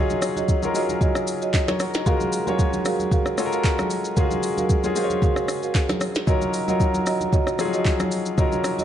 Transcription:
Already playing: F#3 C#4 D#4 F4 G#4
0.10 high conga, shaker
0.22 cross-stick, open hi-hat, shaker
0.36 F#4 C#5 D#5, high conga, shaker
0.49 kick, shaker
0.62 F#3 C#4 D#4 F4 A#4, high conga, shaker
0.74 F#3 C#4 D#4 F4 F#4 G#4 C#5 D#5, open hi-hat, shaker
0.83 A#4
0.89 high conga, shaker
1.01 F#4 C#5 D#5, kick, low conga, shaker
1.15 cross-stick, shaker
1.28 open hi-hat, shaker
1.42 F#4 C#5 D#5, shaker
1.54 D#5, kick, snare, clap, shaker
1.68 A#4 C#5, cross-stick, snare, high conga, shaker
1.80 F#4 A#4, cross-stick, open hi-hat, shaker
1.94 D#4 F#4, snare, shaker
2.06 G#3 C#4 F4 F#4 G#4 A#4 F5, kick, low conga, shaker
2.20 high conga, shaker
2.33 open hi-hat, shaker
2.47 G#3 C#4 F4 F#4 G#4 A#4 C#5 F5, high conga, shaker
2.59 kick, shaker
2.73 high conga, shaker
2.85 F#4 G#4 A#4 F5, cross-stick, open hi-hat, shaker
3.00 high conga, shaker
3.11 F#4 G#4 A#4 F5, kick, low conga, shaker
3.26 cross-stick, shaker
3.37 G#3 C#4 F4 F#4 A4, cross-stick, open hi-hat, shaker
3.46 A#4
3.52 F#4 G#4 A#4 F5, shaker
3.64 kick, clap, shaker
3.79 cross-stick, high conga, shaker
3.90 open hi-hat, shaker
4.05 shaker
4.17 G#3 C#4 F4 F#4 G#4 A#4 F5, kick, low conga, shaker
4.31 high conga, shaker
4.43 open hi-hat, shaker
4.57 F#4 G#4 A#4 F5, high conga, shaker
4.70 kick, shaker
4.84 G#3 C#4 F4 F#4 G#4, high conga, shaker
4.95 G#3 C#4 F4 F#4 G#4 A#4 C5 F5, open hi-hat, shaker
5.04 C#5
5.10 high conga, shaker
5.22 F#4 G#4 A#4 F5, kick, low conga, shaker
5.36 cross-stick, shaker
5.48 cross-stick, open hi-hat, shaker
5.63 F#4 G#4 A#4 F5, shaker
5.75 kick, snare, clap, shaker
5.89 cross-stick, snare, high conga, shaker
6.01 cross-stick, open hi-hat, shaker
6.15 snare, shaker
6.27 F#3 C#4 D#4 F4 F#4 A#4 C#5 D#5, kick, low conga, shaker
6.42 high conga, shaker
6.54 open hi-hat, shaker
6.68 F#3 C#4 D#4 F4 F#4 A#4 C#5 D#5, high conga, shaker
6.80 kick, shaker
6.94 high conga, shaker
7.06 F#4 C#5 D#5, cross-stick, open hi-hat, shaker
7.21 high conga, shaker
7.32 F#4 C#5 D#5, kick, low conga, shaker
7.47 cross-stick, shaker
7.59 F3 C#4 D#4 F4 G#4, cross-stick, open hi-hat, shaker
7.65 F#3
7.73 F#4 C#5 D#5, shaker
7.85 kick, clap, shaker
8.00 cross-stick, high conga, shaker
8.12 open hi-hat, shaker
8.26 shaker
8.37 F#3 C#4 D#4 F4 F#4 A#4 C#5 D#5, kick, low conga, shaker
8.52 high conga, shaker
8.64 cross-stick, open hi-hat, shaker
8.78 F#4 C#5 D#5, high conga, shaker

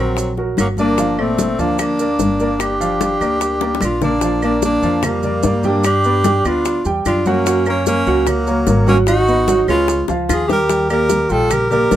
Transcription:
Already playing: A#1 F#3 C4 F#4
0.00 A#4
0.17 high bongo, high conga, maracas
0.37 F#3 F#4 A#4, high bongo, high conga
0.57 G1 F#3 A#3, high bongo, low bongo, high conga, claves, maracas
0.77 A#3 D4 A#4 D5, high bongo, high conga, maracas
0.98 F3 F4 F5, high bongo, high conga, maracas
1.19 A#2 A3 C4 A4 D5, high conga, claves
1.39 high bongo, high conga, maracas
1.58 D2 F3 A#3 D4 F4 F5, high bongo, high conga, maracas
1.79 A#3 D4, high bongo, high conga, claves, maracas
1.99 A#3 A#4 D5, high bongo, high conga, maracas
2.19 G1, high bongo, low bongo, high conga, maracas
2.40 A#3 A#4 D5, high bongo, maracas
2.59 D4 G4, high bongo, high conga, claves, maracas
2.80 F3 F4 F5, high conga, maracas
3.01 high bongo, high conga, maracas
3.21 D2 A#3 A#4 D5, high bongo, claves, maracas
3.41 high bongo, high conga, maracas
3.61 A#3 A#4 D5, high bongo, high conga
3.75 high bongo
3.81 A#1 D4 F4, high conga, claves, maracas
4.02 A#3 D4 A#4 D5, low bongo, low conga, maracas
4.21 F3 F4 F5, high bongo, high conga, maracas
4.42 A#3 D4 A#4 D5, high conga, claves, maracas
4.62 A#3 D4, high bongo, high conga, maracas
4.83 F2 F3 F4 F5, high bongo, high conga, maracas
5.03 G3 A#3, high bongo, high conga, low conga, claves, maracas
5.23 A#3 A#4 D5, high bongo, high conga, low conga, maracas
5.43 G2 A#3 A#4 D5, high bongo, low bongo, high conga, maracas
5.63 G3 A#3 D4 G4 G5, high bongo, high conga, maracas
5.84 D4 G4, high bongo, high conga, claves, maracas
6.04 B3 B4 D5, high conga, maracas
6.24 G3 G4 G5, high bongo, high conga, maracas
6.45 D2 B3 D4 F4 B4 D5, high bongo, high conga, claves, maracas
6.65 high bongo, high conga, maracas
6.85 E2 G3 G4 G5, high bongo, high conga, maracas
7.05 F#2 D4 F4, high bongo, low bongo, high conga, claves, maracas
7.25 F#3 A#3 C#4 F#4 F#5, high bongo, high conga, maracas
7.46 F#3 F#4 F#5, high bongo, high conga, maracas
7.66 A#3 C#4 A#4 C#5, high conga, claves, maracas
7.86 A#3 C#4, high bongo, high conga, maracas
8.07 C#2 F#3 F#4 F#5, high bongo, high conga, maracas
8.27 F#3 A#3, high bongo, high conga, low conga, claves, maracas
8.47 A#3 A#4 C#5, high bongo, high conga, maracas
8.67 G#1 A#3 A#4 C#5, high bongo, low bongo, high conga, maracas
8.87 F#3 A#3 C#4 F#4 F#5, high bongo, high conga, maracas
9.07 D#4 F#4, high bongo, claves, maracas
9.28 B3 B4 D#5, high conga, maracas
9.48 F#3 F#4 F#5, high bongo, high conga, maracas
9.68 C#2 G#3 C#4 F4 G#4 B4, high bongo, high conga, claves, maracas
9.88 high bongo, high conga, maracas
10.08 C#2 F3 F4 F5, high bongo, high conga, maracas
10.29 D#2 F4 G#4, low bongo, high conga, claves, maracas
10.48 G3 G4 G5, low bongo, high conga, maracas
10.52 A#4
10.69 G3 G4 G5, high bongo, high conga, maracas
10.90 A#3 G4 A#4 D5, high conga, claves, maracas
11.10 high bongo, high conga, maracas
11.30 A#1 G3 F4 G4 A4 G5, high bongo, high conga, maracas
11.50 G4 A#4, high bongo, high conga, low conga, claves, maracas
11.70 A#3 G4 A#4 D5, high bongo, high conga, low conga, maracas
11.91 A1 A#3 A#4 D5, high bongo, low bongo, high conga, maracas

